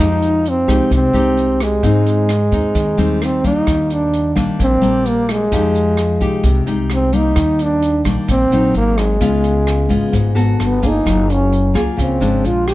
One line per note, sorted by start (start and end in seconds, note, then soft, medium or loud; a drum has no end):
0.00 0.64 F2 medium
0.00 0.88 F3 medium
0.00 0.44 G#3 medium
0.00 0.45 D#4 soft
0.00 0.50 D#4 loud
0.00 0.45 G4 medium
0.22 closed hi-hat soft
0.45 0.93 C4 medium
0.45 closed hi-hat soft
0.67 0.79 C2 medium
0.67 1.10 G#3 medium
0.67 1.10 D#4 medium
0.67 1.10 G4 medium
0.67 kick soft
0.67 cross-stick medium
0.67 closed hi-hat soft
0.90 1.12 C2 medium
0.90 1.80 C3 medium
0.90 kick medium
0.90 closed hi-hat soft
0.94 1.65 C4 medium
1.13 1.79 C2 medium
1.13 1.79 G#3 medium
1.13 1.79 D#4 medium
1.13 1.79 G4 medium
1.13 closed hi-hat soft
1.37 closed hi-hat soft
1.60 3.26 G#3 medium
1.60 cross-stick medium
1.60 closed hi-hat soft
1.83 2.48 G#2 medium
1.83 2.73 G#2 medium
1.83 2.29 C4 medium
1.83 2.29 D#4 soft
1.83 kick medium
1.83 closed hi-hat medium
2.06 closed hi-hat soft
2.29 cross-stick medium
2.29 closed hi-hat soft
2.52 2.62 D#2 medium
2.52 2.95 C4 medium
2.52 2.95 D#4 medium
2.52 kick soft
2.52 closed hi-hat soft
2.75 2.96 D#2 medium
2.75 3.65 D#3 soft
2.75 kick medium
2.75 closed hi-hat medium
2.97 3.63 D#2 medium
2.97 3.40 G3 medium
2.97 3.41 C4 medium
2.97 3.41 D#4 medium
2.97 closed hi-hat soft
3.22 3.46 C4 medium
3.22 cross-stick medium
3.22 closed hi-hat soft
3.44 4.33 G3 medium
3.44 4.33 A#3 medium
3.44 3.94 D#4 medium
3.44 kick soft
3.44 closed hi-hat soft
3.67 4.32 D#2 medium
3.67 4.57 D#3 medium
3.67 kick medium
3.67 cross-stick medium
3.67 closed hi-hat soft
3.90 4.38 D4 medium
3.90 closed hi-hat soft
4.13 closed hi-hat soft
4.35 4.47 A#1 medium
4.35 4.78 G3 medium
4.35 4.78 A#3 medium
4.35 4.79 D4 medium
4.35 kick soft
4.35 cross-stick medium
4.35 closed hi-hat soft
4.59 4.81 A#1 medium
4.59 5.49 A#2 soft
4.59 5.10 C4 medium
4.59 kick medium
4.59 closed hi-hat soft
4.81 5.47 A#1 medium
4.81 5.47 G3 medium
4.81 5.48 A#3 medium
4.81 5.48 D4 medium
4.81 closed hi-hat soft
5.06 5.33 A#3 medium
5.06 closed hi-hat soft
5.29 6.68 G#3 medium
5.29 cross-stick medium
5.29 closed hi-hat soft
5.52 6.17 F2 medium
5.52 6.42 F3 medium
5.52 5.98 G#3 medium
5.52 5.98 D#4 medium
5.52 5.98 G4 medium
5.52 kick medium
5.52 closed hi-hat medium
5.75 closed hi-hat soft
5.97 cross-stick medium
5.97 closed hi-hat soft
6.21 6.31 C2 medium
6.21 6.63 G#3 medium
6.21 6.63 D#4 medium
6.21 6.64 G4 medium
6.21 kick soft
6.21 closed hi-hat soft
6.43 6.65 C2 medium
6.43 7.34 C3 medium
6.43 kick medium
6.43 closed hi-hat medium
6.66 7.32 C2 medium
6.66 7.09 G#3 medium
6.66 7.10 D#4 medium
6.66 7.10 G4 medium
6.66 closed hi-hat soft
6.90 7.18 C4 medium
6.90 cross-stick medium
6.90 closed hi-hat soft
7.13 8.01 G3 medium
7.13 8.02 A#3 medium
7.13 7.64 D#4 medium
7.13 closed hi-hat soft
7.36 8.01 D#2 medium
7.36 8.26 D#3 medium
7.36 kick medium
7.36 cross-stick medium
7.36 closed hi-hat medium
7.59 8.07 D4 medium
7.59 closed hi-hat soft
7.82 closed hi-hat soft
8.04 8.16 A#1 medium
8.04 8.47 G3 medium
8.04 8.47 A#3 medium
8.04 8.48 D4 medium
8.04 kick soft
8.04 cross-stick medium
8.04 closed hi-hat soft
8.28 8.50 A#1 medium
8.28 8.72 A#2 medium
8.28 8.73 C4 loud
8.28 kick medium
8.28 closed hi-hat medium
8.51 8.73 A#1 medium
8.51 9.17 F#3 medium
8.51 9.17 C4 medium
8.51 9.18 D#4 medium
8.51 closed hi-hat soft
8.74 9.17 G#1 medium
8.74 9.00 A#3 medium
8.74 closed hi-hat soft
8.98 10.37 G#3 medium
8.98 cross-stick medium
8.98 closed hi-hat soft
9.20 9.86 C#2 medium
9.20 10.11 C#3 medium
9.20 9.86 G#3 soft
9.20 9.86 B3 medium
9.20 9.87 F4 medium
9.20 kick medium
9.20 closed hi-hat soft
9.44 closed hi-hat soft
9.67 cross-stick medium
9.67 closed hi-hat soft
9.89 10.01 G#1 medium
9.89 10.32 G#3 medium
9.89 10.32 B3 medium
9.89 10.33 F4 medium
9.89 kick soft
9.89 closed hi-hat soft
10.12 10.35 G#1 medium
10.12 10.57 G#2 medium
10.12 kick medium
10.12 closed hi-hat medium
10.35 10.57 G#1 medium
10.35 10.78 B3 medium
10.35 10.78 F#4 medium
10.35 10.79 A4 medium
10.35 closed hi-hat soft
10.59 11.02 G1 medium
10.59 cross-stick medium
10.59 closed hi-hat soft
10.64 10.88 B3 medium
10.82 11.71 A#3 medium
10.82 11.71 F4 medium
10.82 11.72 G#4 medium
10.82 kick medium
10.82 closed hi-hat soft
10.87 11.34 D#4 medium
11.06 11.71 F#1 medium
11.06 11.96 F#3 medium
11.06 kick medium
11.06 cross-stick medium
11.06 closed hi-hat medium
11.30 11.77 C#4 medium
11.30 closed hi-hat soft
11.53 closed hi-hat soft
11.74 11.86 C#2 medium
11.74 12.17 A#3 medium
11.74 12.17 F4 medium
11.74 12.17 G#4 medium
11.74 kick soft
11.74 cross-stick medium
11.74 closed hi-hat soft
11.97 12.20 C#2 medium
11.97 12.41 C#3 soft
11.97 12.47 C4 medium
11.97 kick medium
11.97 closed hi-hat medium
12.20 12.42 G#1 medium
12.20 12.74 F3 medium
12.20 12.74 G#3 medium
12.20 12.74 D4 medium
12.20 closed hi-hat soft
12.44 12.74 A#1 medium
12.44 12.70 F4 medium
12.44 closed hi-hat soft
12.68 12.74 G4 medium
12.68 cross-stick medium
12.68 closed hi-hat soft